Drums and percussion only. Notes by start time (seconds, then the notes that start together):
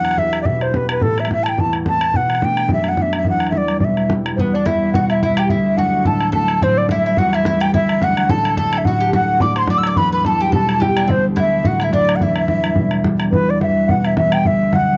0.05 bodhran
0.11 bodhran
0.18 bodhran
0.33 bodhran
0.45 bodhran
0.61 bodhran
0.74 bodhran
0.89 bodhran
1.01 bodhran
1.18 bodhran
1.25 bodhran
1.31 bodhran
1.46 bodhran
1.58 bodhran
1.73 bodhran
1.86 bodhran
2.01 bodhran
2.14 bodhran
2.30 bodhran
2.35 bodhran
2.42 bodhran
2.57 bodhran
2.69 bodhran
2.84 bodhran
2.97 bodhran
3.13 bodhran
3.25 bodhran
3.40 bodhran
3.47 bodhran
3.52 bodhran
3.68 bodhran
3.80 bodhran
3.97 bodhran
4.10 bodhran
4.26 bodhran
4.38 bodhran
4.66 bodhran
4.74 bodhran
4.94 bodhran
5.10 bodhran
5.23 bodhran
5.30 bodhran
5.37 bodhran
5.49 bodhran
5.78 bodhran
5.86 bodhran
6.05 bodhran
6.21 bodhran
6.33 bodhran
6.48 bodhran
6.62 bodhran
6.89 bodhran
6.97 bodhran
7.17 bodhran
7.33 bodhran
7.45 bodhran
7.53 bodhran
7.61 bodhran
7.74 bodhran
7.89 bodhran
8.02 bodhran
8.10 bodhran
8.17 bodhran
8.30 bodhran
8.45 bodhran
8.57 bodhran
8.66 bodhran
8.73 bodhran
8.85 bodhran
9.13 bodhran
9.40 bodhran
9.56 bodhran
9.67 bodhran
9.75 bodhran
9.83 bodhran
9.96 bodhran
10.25 bodhran
10.33 bodhran
10.53 bodhran
10.69 bodhran
10.82 bodhran
10.89 bodhran
10.97 bodhran
11.09 bodhran
11.37 bodhran
11.65 bodhran
11.80 bodhran
11.93 bodhran
12.00 bodhran
12.09 bodhran
12.21 bodhran
12.36 bodhran
12.48 bodhran
12.56 bodhran
12.64 bodhran
12.76 bodhran
12.91 bodhran
13.04 bodhran
13.12 bodhran
13.20 bodhran
13.33 bodhran
13.61 bodhran
13.69 bodhran
13.89 bodhran
14.05 bodhran
14.17 bodhran
14.25 bodhran
14.32 bodhran
14.45 bodhran
14.73 bodhran
14.81 bodhran